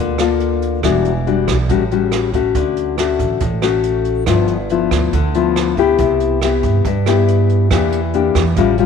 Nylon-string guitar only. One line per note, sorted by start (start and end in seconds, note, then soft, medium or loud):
0.00 0.82 D3 medium
0.00 0.16 A#3 medium
0.00 0.16 F4 medium
0.00 0.17 A4 medium
0.20 0.81 A#3 medium
0.20 0.80 F4 medium
0.20 0.81 A4 medium
0.84 1.68 E3 medium
0.84 1.11 G3 medium
0.84 1.12 D4 medium
0.84 1.12 F#4 medium
1.27 1.56 G3 medium
1.27 1.56 D4 medium
1.27 1.56 F#4 medium
1.70 2.53 A2 medium
1.70 1.82 G3 medium
1.70 1.82 C#4 medium
1.70 1.83 F#4 medium
1.92 2.31 G3 medium
1.92 2.31 C#4 medium
1.92 2.31 F#4 medium
2.34 2.95 A3 medium
2.34 2.95 C#4 medium
2.34 2.96 F#4 medium
2.55 3.39 D3 medium
2.99 3.41 A3 medium
2.99 3.42 C#4 medium
2.99 3.42 F#4 medium
3.41 4.25 A2 medium
3.63 4.24 A3 medium
3.63 4.24 C#4 medium
3.63 4.24 F#4 medium
4.27 5.11 G2 soft
4.27 4.55 F3 medium
4.27 4.55 B3 soft
4.27 4.55 E4 medium
4.71 5.13 F3 medium
4.71 5.13 B3 medium
4.71 5.14 E4 medium
5.14 5.97 D3 medium
5.35 5.75 F3 medium
5.35 5.75 B3 medium
5.35 5.75 E4 medium
5.78 6.39 B3 medium
5.78 6.39 E4 medium
5.78 6.40 G4 medium
6.00 6.83 C3 medium
6.43 6.85 B3 medium
6.43 6.86 E4 medium
6.43 6.86 G4 medium
6.86 7.70 G2 medium
7.07 7.68 B3 medium
7.07 7.68 E4 medium
7.07 7.69 G4 medium
7.71 8.55 E3 medium
7.71 7.99 A#3 medium
7.71 7.99 D4 medium
7.71 7.99 G4 medium
8.14 8.43 A#3 medium
8.14 8.43 D4 medium
8.14 8.44 G4 medium
8.58 8.86 A2 medium
8.58 8.76 G3 medium
8.58 8.76 C#4 medium
8.58 8.76 F4 medium
8.79 8.86 G3 medium
8.79 8.86 C#4 medium
8.79 8.86 F4 medium